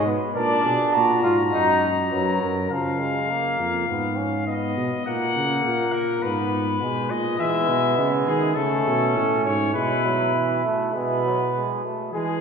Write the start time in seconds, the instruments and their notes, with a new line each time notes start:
Already playing: bass trombone G#2
0.06 trombone B3, flugelhorn B4
0.35 bass trombone A#2, trombone D4, flugelhorn A#4, trumpet D5
0.63 bass trombone B2, flugelhorn G#4
0.93 bass trombone A#2, flugelhorn F#4, trumpet A#5
1.23 bass trombone G#2, trombone F4, flugelhorn F#4
1.52 bass trombone F#2, trombone D#4
2.11 bass trombone F#2, trombone F#3, flugelhorn B4
2.41 bass trombone F#2, flugelhorn A#4
2.70 bass trombone C#3, trombone F3, trumpet F5
3.00 trombone G#3
3.30 trombone A#3
3.59 bass trombone F2
3.88 bass trombone G#2, trombone B3
4.18 trombone C#4
4.47 trombone B3, trumpet D#5
4.76 bass trombone B2
5.05 bass trombone A#2, trombone A#3, trumpet F#5
5.35 bass trombone C#3
5.64 bass trombone A#2
5.93 trumpet A#4
6.22 bass trombone G#2, trombone B3, trumpet B4
6.81 bass trombone B2, trombone G#3
7.10 bass trombone A#2, trumpet D#5
7.38 bass trombone E3, trombone G#3, flugelhorn B3, trumpet E5
7.68 bass trombone B2
7.97 bass trombone C#3, trombone G#3
8.26 bass trombone D#3, trumpet G#4
8.55 bass trombone C#3, trombone A3, flugelhorn C#4, trumpet A4
8.87 bass trombone B2
9.16 bass trombone A2
9.44 bass trombone G#2, trumpet C#5
9.74 bass trombone B2, trombone G#3, flugelhorn E4, trumpet B4
10.05 trombone F#3
10.34 trombone E3
10.64 trombone A3
10.94 bass trombone B2, trombone G#3, flugelhorn B3, trumpet B4
11.25 trombone F#3
11.54 trombone G#3
11.84 trombone A3
12.13 bass trombone E3, trombone G#3, trumpet G#4